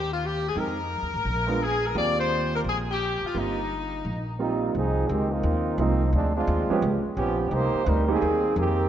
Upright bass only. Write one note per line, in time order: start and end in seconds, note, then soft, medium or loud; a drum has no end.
0.00 0.52 D#2 medium
0.56 0.99 F2 medium
1.02 1.13 D#2 medium
1.14 1.24 A1 medium
1.25 1.92 A#1 medium
1.95 2.61 D#2 medium
2.64 3.18 A#1 medium
3.22 muted upright bass stroke soft
3.35 4.01 G1 medium
4.05 4.71 A#1 medium
4.75 5.08 C2 medium
5.09 5.43 C#2 medium
5.43 5.77 D#2 medium
5.78 6.12 C2 medium
6.13 6.47 D2 medium
6.47 6.68 D#2 medium
6.70 muted upright bass stroke soft
6.82 7.03 C#2 medium
7.05 muted upright bass stroke soft
7.17 7.50 A#1 medium
7.51 7.72 C2 medium
7.74 muted upright bass stroke soft
7.86 8.20 D2 medium
8.22 8.55 D#2 medium
8.56 8.89 F2 medium